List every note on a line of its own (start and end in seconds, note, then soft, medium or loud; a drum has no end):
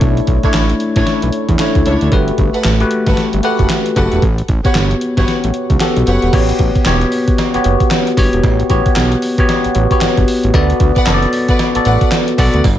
0.00 0.21 B1 loud
0.00 0.44 A3 medium
0.00 0.44 D4 medium
0.00 0.44 E4 medium
0.00 0.45 C#5 loud
0.00 kick loud
0.00 closed hi-hat medium
0.17 closed hi-hat soft
0.27 0.39 B1 medium
0.27 kick medium
0.27 closed hi-hat medium
0.43 0.79 A3 medium
0.43 0.54 D4 medium
0.43 0.79 D4 medium
0.43 0.54 E4 medium
0.43 0.79 E4 medium
0.43 0.54 A4 medium
0.43 0.54 C#5 medium
0.43 0.79 C#5 medium
0.43 kick loud
0.43 closed hi-hat medium
0.54 0.74 A1 medium
0.54 snare loud
0.54 clap medium
0.54 closed hi-hat medium
0.69 closed hi-hat medium
0.80 closed hi-hat medium
0.96 1.04 A1 medium
0.96 1.42 A3 medium
0.96 1.01 C#4 medium
0.96 1.06 D4 medium
0.96 1.07 E4 medium
0.96 1.42 E4 medium
0.96 1.07 A4 medium
0.96 1.07 C#5 medium
0.96 1.42 C#5 medium
0.96 kick medium
0.96 snare medium
0.96 closed hi-hat medium
1.03 1.45 D4 medium
1.03 snare medium
1.03 closed hi-hat medium
1.22 1.31 B1 medium
1.22 closed hi-hat medium
1.32 closed hi-hat medium
1.49 1.57 E2 medium
1.49 kick medium
1.49 closed hi-hat medium
1.59 1.99 A3 medium
1.59 1.99 D4 medium
1.59 1.99 E4 medium
1.59 2.00 C#5 loud
1.59 snare loud
1.59 clap medium
1.59 closed hi-hat medium
1.75 1.83 D2 medium
1.75 kick medium
1.75 closed hi-hat medium
1.85 1.98 C#2 medium
1.85 2.01 D4 medium
1.85 2.01 E4 medium
1.85 2.01 A4 medium
1.85 2.02 C#5 medium
1.85 closed hi-hat medium
2.01 2.09 D2 medium
2.01 closed hi-hat soft
2.12 2.31 G1 loud
2.12 2.60 A3 medium
2.12 2.60 F#4 medium
2.12 2.60 G4 medium
2.12 2.61 B4 loud
2.12 kick loud
2.12 closed hi-hat medium
2.28 closed hi-hat soft
2.38 2.50 G1 loud
2.38 kick medium
2.38 closed hi-hat medium
2.54 2.64 A4 medium
2.54 2.64 B4 medium
2.54 2.65 F#5 medium
2.54 closed hi-hat medium
2.64 2.84 A1 loud
2.64 snare loud
2.64 clap loud
2.64 closed hi-hat medium
2.80 3.26 A3 medium
2.80 3.26 F#4 medium
2.80 3.26 G4 medium
2.80 3.27 B4 loud
2.80 closed hi-hat soft
2.91 closed hi-hat medium
3.06 3.15 G1 medium
3.06 3.17 A4 medium
3.06 3.17 B4 medium
3.06 3.17 F#5 medium
3.06 kick medium
3.06 snare medium
3.06 closed hi-hat medium
3.17 snare medium
3.17 closed hi-hat medium
3.33 3.41 G1 medium
3.33 closed hi-hat medium
3.43 3.83 A3 medium
3.43 3.83 F#4 medium
3.43 3.84 G4 medium
3.43 3.59 A4 medium
3.43 3.59 B4 medium
3.43 3.84 B4 loud
3.43 3.59 F#5 medium
3.43 closed hi-hat medium
3.59 3.67 F#1 medium
3.59 kick medium
3.59 closed hi-hat medium
3.70 snare loud
3.70 clap medium
3.70 closed hi-hat medium
3.86 closed hi-hat medium
3.96 4.08 F#1 medium
3.96 4.22 A3 medium
3.96 4.23 F#4 medium
3.96 4.23 G4 medium
3.96 4.12 A4 medium
3.96 4.12 B4 medium
3.96 4.23 B4 loud
3.96 4.12 F#5 medium
3.96 kick medium
3.96 closed hi-hat medium
4.12 4.20 E1 medium
4.12 closed hi-hat soft
4.22 4.42 A1 loud
4.22 kick loud
4.22 closed hi-hat medium
4.38 closed hi-hat soft
4.48 4.61 A1 loud
4.48 kick medium
4.48 closed hi-hat medium
4.64 5.00 B3 medium
4.64 5.00 F#4 medium
4.64 4.75 G4 medium
4.64 5.00 G4 medium
4.64 4.75 B4 medium
4.64 4.75 C#5 medium
4.64 5.00 C#5 loud
4.64 4.75 F#5 medium
4.64 kick loud
4.64 closed hi-hat medium
4.75 4.95 G1 loud
4.75 snare loud
4.75 clap medium
4.75 closed hi-hat medium
4.91 closed hi-hat soft
5.01 closed hi-hat medium
5.17 5.25 G1 medium
5.17 5.63 B3 medium
5.17 5.63 F#4 medium
5.17 5.27 G4 medium
5.17 5.63 G4 medium
5.17 5.28 B4 medium
5.17 5.28 C#5 medium
5.17 5.64 C#5 medium
5.17 5.28 F#5 medium
5.17 kick medium
5.17 snare medium
5.17 closed hi-hat medium
5.28 snare medium
5.28 closed hi-hat medium
5.44 5.52 A1 medium
5.44 closed hi-hat medium
5.54 closed hi-hat medium
5.70 5.78 C#2 medium
5.70 kick medium
5.70 closed hi-hat medium
5.80 6.20 B3 medium
5.80 6.20 F#4 medium
5.80 6.21 G4 medium
5.80 6.21 A4 loud
5.80 snare loud
5.80 clap medium
5.80 closed hi-hat medium
5.96 6.04 B1 medium
5.96 closed hi-hat medium
6.06 6.19 F#1 medium
6.06 6.22 G4 medium
6.06 6.22 B4 medium
6.06 6.22 C#5 medium
6.06 6.23 F#5 medium
6.06 closed hi-hat medium
6.22 6.30 E1 medium
6.22 closed hi-hat soft
6.33 6.53 A1 loud
6.33 6.73 B3 medium
6.33 6.73 F#4 medium
6.33 6.73 G4 medium
6.33 6.74 C#5 loud
6.33 kick loud
6.33 closed hi-hat medium
6.33 crash medium
6.33 cowbell medium
6.49 closed hi-hat medium
6.59 6.71 A1 loud
6.59 kick loud
6.59 closed hi-hat medium
6.75 kick loud
6.75 closed hi-hat medium
6.86 7.05 E1 medium
6.86 7.34 B3 medium
6.86 7.34 F#4 medium
6.86 7.34 G4 medium
6.86 7.34 C#5 loud
6.86 snare loud
6.86 clap loud
6.86 closed hi-hat medium
6.86 cowbell medium
7.01 closed hi-hat medium
7.12 open hi-hat medium
7.28 kick medium
7.28 closed hi-hat medium
7.38 snare medium
7.38 closed hi-hat medium
7.38 cowbell medium
7.54 7.59 F#1 soft
7.54 8.00 B3 medium
7.54 8.00 F#4 medium
7.54 8.00 G4 medium
7.54 8.01 C#5 medium
7.54 closed hi-hat medium
7.64 7.77 F#1 medium
7.64 closed hi-hat medium
7.80 kick medium
7.80 closed hi-hat medium
7.91 snare loud
7.91 clap medium
7.91 closed hi-hat medium
7.91 cowbell medium
8.07 closed hi-hat medium
8.17 8.29 G1 medium
8.17 8.57 B3 medium
8.17 8.57 F#4 medium
8.17 8.57 G4 medium
8.17 8.58 C#5 loud
8.17 kick loud
8.17 open hi-hat medium
8.33 8.41 E1 medium
8.33 closed hi-hat soft
8.44 8.63 A1 loud
8.44 kick loud
8.44 closed hi-hat medium
8.44 cowbell medium
8.60 closed hi-hat soft
8.70 8.82 A1 loud
8.70 9.18 B3 medium
8.70 9.18 F#4 medium
8.70 9.18 G4 medium
8.70 9.18 C#5 loud
8.70 kick medium
8.70 closed hi-hat medium
8.86 kick loud
8.86 closed hi-hat medium
8.96 9.16 B1 medium
8.96 snare loud
8.96 clap medium
8.96 closed hi-hat medium
8.96 cowbell medium
9.12 closed hi-hat medium
9.22 open hi-hat medium
9.38 9.74 B3 loud
9.38 9.74 F#4 medium
9.38 9.74 G4 medium
9.38 9.74 C#5 loud
9.38 kick loud
9.38 closed hi-hat medium
9.49 snare medium
9.49 closed hi-hat medium
9.49 cowbell medium
9.64 9.69 A1 soft
9.64 closed hi-hat medium
9.75 9.87 A1 medium
9.75 closed hi-hat medium
9.91 10.37 B3 medium
9.91 10.37 F#4 medium
9.91 10.37 G4 medium
9.91 10.37 C#5 medium
9.91 kick medium
9.91 closed hi-hat medium
10.01 10.08 G1 soft
10.01 snare loud
10.01 clap medium
10.01 closed hi-hat medium
10.01 cowbell medium
10.17 10.25 G1 medium
10.17 kick medium
10.17 closed hi-hat medium
10.28 open hi-hat medium
10.43 10.52 A1 medium
10.43 closed hi-hat soft
10.54 10.74 D2 loud
10.54 10.94 B3 loud
10.54 10.94 F#4 medium
10.54 10.94 A4 medium
10.54 10.94 D5 loud
10.54 kick loud
10.54 closed hi-hat medium
10.54 cowbell medium
10.70 closed hi-hat medium
10.80 10.92 D2 loud
10.80 kick loud
10.80 closed hi-hat medium
10.96 11.06 B4 medium
10.96 11.07 D5 medium
10.96 11.07 F#5 medium
10.96 kick loud
10.96 closed hi-hat medium
11.06 11.26 F#1 medium
11.06 11.55 B3 medium
11.06 11.55 F#4 medium
11.06 11.55 A4 medium
11.06 11.15 C#5 medium
11.06 snare loud
11.06 clap loud
11.06 closed hi-hat medium
11.06 cowbell medium
11.14 11.58 D5 loud
11.22 closed hi-hat medium
11.33 open hi-hat medium
11.48 11.59 B4 medium
11.48 11.59 D5 medium
11.48 11.59 F#5 medium
11.48 kick medium
11.48 closed hi-hat medium
11.59 snare medium
11.59 closed hi-hat medium
11.59 cowbell medium
11.75 11.80 A1 soft
11.75 12.21 B3 medium
11.75 12.21 F#4 medium
11.75 12.21 A4 medium
11.75 12.21 D5 medium
11.75 closed hi-hat medium
11.85 11.98 A1 loud
11.85 12.01 B4 medium
11.85 12.01 D5 medium
11.85 12.01 F#5 medium
11.85 closed hi-hat medium
12.01 kick medium
12.01 closed hi-hat medium
12.12 snare loud
12.12 clap medium
12.12 closed hi-hat medium
12.12 cowbell medium
12.28 closed hi-hat medium
12.38 12.50 B1 medium
12.38 12.65 B3 medium
12.38 12.65 F#4 medium
12.38 12.65 A4 medium
12.38 12.54 B4 medium
12.38 12.54 D5 medium
12.38 12.65 D5 loud
12.38 12.54 F#5 medium
12.38 kick medium
12.38 open hi-hat medium
12.54 12.62 D2 medium
12.54 closed hi-hat soft
12.64 12.79 G1 loud
12.64 kick loud
12.64 closed hi-hat medium
12.64 tambourine medium
12.64 cowbell medium